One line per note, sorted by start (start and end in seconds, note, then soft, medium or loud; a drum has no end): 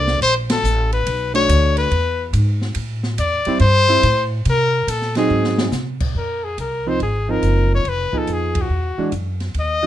0.00 0.20 C2 medium
0.00 0.19 A#3 medium
0.00 0.19 D4 medium
0.00 0.20 A4 medium
0.00 0.20 C5 medium
0.00 0.19 D5 medium
0.07 snare soft
0.21 0.62 A#1 medium
0.21 0.35 C5 loud
0.21 kick soft
0.21 ride medium
0.50 0.90 A4 medium
0.50 snare medium
0.50 ride medium
0.63 1.05 A1 medium
0.63 hi-hat pedal medium
0.92 1.32 B4 medium
0.92 ride soft
1.06 1.48 B1 medium
1.06 kick soft
1.06 ride medium
1.34 1.88 A3 medium
1.34 1.88 D4 medium
1.34 1.89 F#4 medium
1.34 1.75 C#5 medium
1.34 ride medium
1.48 1.90 D2 medium
1.48 hi-hat pedal medium
1.48 ride medium
1.77 2.30 B4 medium
1.77 ride soft
1.91 2.32 E2 medium
1.91 kick soft
1.91 ride medium
2.33 2.75 G#2 medium
2.33 kick soft
2.33 hi-hat pedal soft
2.33 ride medium
2.62 snare soft
2.75 3.17 A2 medium
2.75 kick soft
2.75 ride medium
3.03 snare soft
3.18 3.44 E2 medium
3.18 3.59 D5 medium
3.18 kick soft
3.18 hi-hat pedal medium
3.18 ride medium
3.45 3.60 G3 medium
3.45 3.60 C4 medium
3.45 3.60 E4 medium
3.45 muted upright bass stroke soft
3.45 ride soft
3.59 4.02 G2 medium
3.59 4.27 C5 loud
3.59 kick soft
3.59 ride medium
3.88 4.02 G3 medium
3.88 4.02 C4 medium
3.88 4.02 E4 medium
4.03 4.44 A2 medium
4.03 kick soft
4.03 hi-hat pedal medium
4.03 ride medium
4.45 4.87 C3 medium
4.45 kick soft
4.45 ride medium
4.50 4.92 A#4 loud
4.87 5.29 A#2 medium
4.87 5.17 A4 medium
4.87 kick soft
4.87 hi-hat pedal medium
4.87 ride medium
5.02 snare soft
5.15 5.70 F#3 medium
5.15 5.70 C4 medium
5.15 5.71 D#4 medium
5.15 5.70 G#4 medium
5.15 snare soft
5.15 ride medium
5.30 5.71 G#2 medium
5.44 snare medium
5.58 snare medium
5.71 6.13 C3 medium
5.71 snare medium
5.71 hi-hat pedal medium
6.00 kick medium
6.00 crash medium
6.15 6.56 F2 medium
6.15 6.45 A#4 medium
6.15 kick soft
6.44 6.58 G#4 medium
6.58 6.99 C2 medium
6.58 6.90 A#4 medium
6.58 kick soft
6.58 hi-hat pedal soft
6.58 ride soft
6.87 6.99 F3 medium
6.87 6.99 C4 medium
6.87 7.00 D#4 medium
6.87 7.02 C5 medium
7.00 7.41 G#1 medium
7.00 7.32 G#4 medium
7.00 kick soft
7.00 ride soft
7.29 7.82 F3 medium
7.29 7.83 C4 medium
7.29 7.83 D#4 medium
7.29 7.72 A#4 medium
7.42 7.84 F#1 medium
7.42 kick soft
7.42 hi-hat pedal soft
7.42 ride soft
7.75 7.90 C#5 medium
7.85 8.11 F1 medium
7.85 kick soft
7.85 ride soft
7.89 8.20 B4 medium
8.13 8.67 F3 soft
8.13 8.67 B3 soft
8.13 8.68 D#4 soft
8.13 8.68 G#4 soft
8.13 muted upright bass stroke soft
8.13 kick soft
8.18 8.35 A4 medium
8.27 8.69 F2 medium
8.27 kick soft
8.27 hi-hat pedal soft
8.27 ride soft
8.33 8.63 G#4 medium
8.55 kick medium
8.55 ride medium
8.62 9.16 F#4 medium
8.69 8.96 E2 medium
8.98 9.11 E3 soft
8.98 9.11 G#3 medium
8.98 9.12 D4 medium
8.98 9.12 F#4 medium
8.98 muted upright bass stroke soft
9.12 9.54 F#2 medium
9.12 kick soft
9.12 hi-hat pedal soft
9.12 ride soft
9.40 snare soft
9.40 ride soft
9.54 9.86 D#2 medium
9.54 kick soft
9.54 ride soft
9.60 9.86 D#5 loud
9.83 9.86 D#3 soft
9.83 9.86 F#3 medium